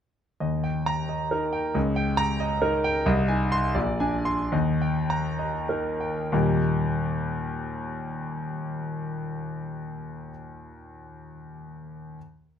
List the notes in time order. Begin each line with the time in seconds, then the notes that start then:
0.40 D#2 D#5
0.64 G5
0.86 A#5
1.09 D#5
1.31 D#4 A#4
1.53 G5
1.74 C#2 D#5
1.96 G5
2.17 A#5
2.40 D#5
2.62 D#4 A#4
2.84 G5
3.06 C2 D#5
3.28 D#4 G#5
3.52 C6
3.75 A#1 D5
4.00 D4 G#5
4.25 C6
4.52 D#2 D#5
4.82 G5
5.10 A#5
5.39 D#5
5.69 D#4 A#4
6.00 G5
6.32 D#2 A#2 G3 A#3 D#4 G4